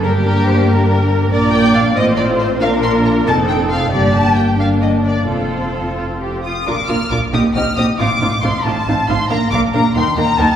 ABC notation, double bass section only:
X:1
M:6/8
L:1/8
Q:3/8=92
K:Gphr
V:1 name="Double bass section" clef=bass
G,,,6 | [K:Bb] B,,,3 A,,,3 | B,,,3 F,,,3 | G,,,6 |
F,,,4- F,,, z | B,,, B,,, B,,, B,,, B,,, B,,, | A,,, A,,, A,,, A,,, A,,, A,,, | B,,, B,,, B,,, E,, E,, E,, |]